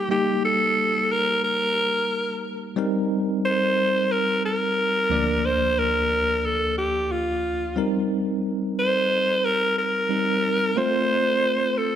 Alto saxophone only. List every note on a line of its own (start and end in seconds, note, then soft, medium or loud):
0.11 0.42 G4 medium
0.44 1.13 A4 loud
1.12 1.43 A#4 medium
1.44 2.40 A#4 medium
3.45 4.13 C5 loud
4.11 4.44 A#4 loud
4.45 5.47 A#4 loud
5.45 5.80 C5 loud
5.79 6.47 A#4 medium
6.45 6.77 A4 medium
6.78 7.13 G4 medium
7.12 7.78 F4 medium
8.79 9.46 C5 loud
9.45 9.77 A#4 loud
9.78 10.79 A#4 loud
10.78 11.79 C5 loud
11.78 11.96 A4 medium